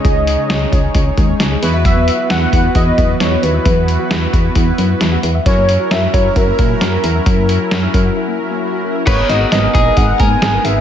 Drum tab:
CC |--------|--------|--------|--------|
HH |xxxxxxxx|xxxxxxxx|xxxxxxxx|xxxxxxxx|
SD |--o---o-|--o---o-|--o---o-|--o---o-|
BD |o--ooo--|o--ooo--|o--oo---|o--ooo--|

CC |--------|x-------|
HH |xxxx----|xxxxxxxx|
SD |--o-----|--o---o-|
BD |o--o----|o--ooo--|